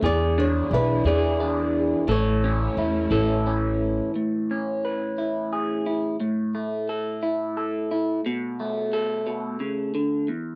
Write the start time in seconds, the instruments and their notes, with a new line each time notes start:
0.02 upright bass E2, clean electric guitar E2 G#4, string section E3 D4 G#4, nylon-string guitar D5
0.38 clean electric guitar D4, nylon-string guitar C#5
0.71 upright bass B1, clean electric guitar E4, nylon-string guitar B4
1.05 upright bass E2, clean electric guitar E3 G#4, nylon-string guitar D5
1.40 clean electric guitar D4
2.08 upright bass A1, clean electric guitar A2 A4, string section A3 C#4 E4, nylon-string guitar C#5
2.44 clean electric guitar C#4
2.77 upright bass E2, clean electric guitar E4
3.10 upright bass A1, clean electric guitar E3 A4
3.47 clean electric guitar C#4
4.16 clean electric guitar A2
4.51 clean electric guitar C#4
4.85 clean electric guitar B4
5.18 clean electric guitar E4
5.53 clean electric guitar G#4
5.86 clean electric guitar E4
6.20 clean electric guitar A2
6.55 clean electric guitar A3
6.89 clean electric guitar A4
7.23 clean electric guitar E4
7.57 clean electric guitar A4
7.91 clean electric guitar E4
8.26 clean electric guitar B2
8.60 clean electric guitar A3
8.93 clean electric guitar A4
9.26 clean electric guitar B2
9.60 clean electric guitar C#3
9.95 clean electric guitar D3
10.28 clean electric guitar E2